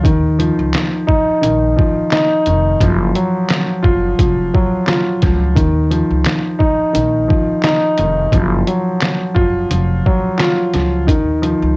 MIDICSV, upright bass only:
0, 0, Header, 1, 2, 480
1, 0, Start_track
1, 0, Key_signature, -6, "minor"
1, 0, Tempo, 689655
1, 34, Time_signature, 4, 2, 24, 8
1, 8189, End_track
2, 0, Start_track
2, 0, Title_t, "Upright bass"
2, 0, Program_c, 0, 32
2, 35, Note_on_c, 0, 39, 100
2, 351, Note_off_c, 0, 39, 0
2, 411, Note_on_c, 0, 37, 86
2, 501, Note_off_c, 0, 37, 0
2, 999, Note_on_c, 0, 34, 96
2, 1201, Note_off_c, 0, 34, 0
2, 1719, Note_on_c, 0, 29, 95
2, 1921, Note_off_c, 0, 29, 0
2, 1955, Note_on_c, 0, 30, 109
2, 2159, Note_off_c, 0, 30, 0
2, 2678, Note_on_c, 0, 30, 82
2, 2881, Note_off_c, 0, 30, 0
2, 2918, Note_on_c, 0, 29, 95
2, 3121, Note_off_c, 0, 29, 0
2, 3639, Note_on_c, 0, 37, 91
2, 3875, Note_off_c, 0, 37, 0
2, 3875, Note_on_c, 0, 39, 101
2, 4191, Note_off_c, 0, 39, 0
2, 4250, Note_on_c, 0, 37, 81
2, 4340, Note_off_c, 0, 37, 0
2, 4837, Note_on_c, 0, 34, 93
2, 5040, Note_off_c, 0, 34, 0
2, 5558, Note_on_c, 0, 29, 95
2, 5760, Note_off_c, 0, 29, 0
2, 5794, Note_on_c, 0, 30, 110
2, 5998, Note_off_c, 0, 30, 0
2, 6517, Note_on_c, 0, 30, 80
2, 6720, Note_off_c, 0, 30, 0
2, 6759, Note_on_c, 0, 29, 96
2, 6961, Note_off_c, 0, 29, 0
2, 7478, Note_on_c, 0, 37, 90
2, 7715, Note_off_c, 0, 37, 0
2, 7715, Note_on_c, 0, 39, 102
2, 8031, Note_off_c, 0, 39, 0
2, 8091, Note_on_c, 0, 37, 84
2, 8181, Note_off_c, 0, 37, 0
2, 8189, End_track
0, 0, End_of_file